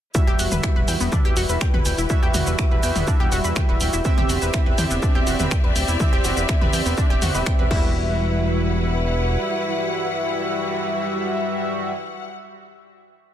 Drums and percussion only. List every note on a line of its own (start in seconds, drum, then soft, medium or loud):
0.15 kick loud
0.15 shaker medium
0.39 open hi-hat loud
0.39 shaker medium
0.52 mid tom medium
0.52 shaker medium
0.63 finger snap loud
0.63 kick loud
0.63 shaker medium
0.88 open hi-hat loud
0.88 shaker medium
1.00 shaker medium
1.12 kick loud
1.12 mid tom medium
1.12 shaker medium
1.37 open hi-hat loud
1.37 shaker medium
1.49 shaker medium
1.61 finger snap loud
1.61 kick loud
1.61 shaker medium
1.74 mid tom medium
1.85 open hi-hat loud
1.85 shaker medium
1.98 shaker medium
2.10 kick loud
2.10 shaker medium
2.34 open hi-hat loud
2.34 mid tom medium
2.34 shaker medium
2.47 shaker medium
2.59 finger snap loud
2.59 kick loud
2.59 shaker medium
2.83 open hi-hat loud
2.83 shaker medium
2.96 open hi-hat medium
2.96 mid tom medium
2.96 shaker medium
3.07 kick loud
3.07 shaker medium
3.32 open hi-hat loud
3.32 shaker medium
3.44 shaker medium
3.56 finger snap loud
3.56 kick loud
3.56 mid tom medium
3.56 shaker medium
3.81 open hi-hat loud
3.81 shaker medium
3.93 shaker medium
4.05 kick loud
4.05 shaker medium
4.18 mid tom medium
4.29 open hi-hat loud
4.29 shaker medium
4.42 shaker medium
4.54 finger snap loud
4.54 kick loud
4.54 shaker medium
4.78 open hi-hat loud
4.78 mid tom medium
4.78 shaker medium
4.91 shaker medium
5.03 kick loud
5.03 shaker medium
5.27 open hi-hat loud
5.27 shaker medium
5.40 mid tom medium
5.40 shaker medium
5.51 finger snap loud
5.51 kick loud
5.51 shaker medium
5.76 open hi-hat loud
5.76 shaker medium
5.88 shaker medium
6.00 kick loud
6.00 mid tom medium
6.00 shaker medium
6.24 open hi-hat loud
6.24 shaker medium
6.37 shaker medium
6.49 finger snap loud
6.49 kick loud
6.49 shaker medium
6.61 mid tom loud
6.73 open hi-hat loud
6.73 shaker medium
6.86 open hi-hat medium
6.86 shaker medium
6.98 kick loud
6.98 shaker medium
7.22 open hi-hat loud
7.22 mid tom medium
7.22 shaker medium
7.35 shaker medium
7.46 finger snap loud
7.46 kick loud
7.46 shaker medium
7.71 kick loud
7.71 crash medium